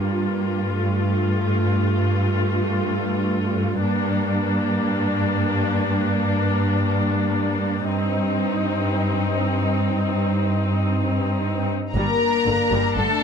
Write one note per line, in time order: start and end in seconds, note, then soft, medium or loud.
0.00 3.77 G2 soft
0.00 0.72 A#3 soft
0.00 3.82 F4 soft
0.77 3.82 A3 soft
3.81 7.84 G2 medium
3.81 7.84 A#3 soft
3.81 7.84 D4 soft
7.88 11.71 G2 soft
7.88 11.71 C4 soft
7.88 11.71 D#4 soft
11.95 12.03 G1 soft
11.95 12.03 G2 soft
11.95 12.19 G3 soft
11.95 12.93 A#3 medium
11.95 13.23 D4 soft
11.95 12.93 A#4 medium
11.95 12.93 A#5 medium
12.46 12.54 G1 soft
12.46 12.54 G2 soft
12.46 12.55 D3 soft
12.71 12.80 G1 medium
12.71 12.79 G2 soft
12.71 12.95 G3 soft
12.96 13.04 G1 soft
12.96 13.05 G2 soft
12.96 13.05 D3 soft
12.96 13.23 A3 medium
12.96 13.23 A4 medium
12.96 13.23 A5 medium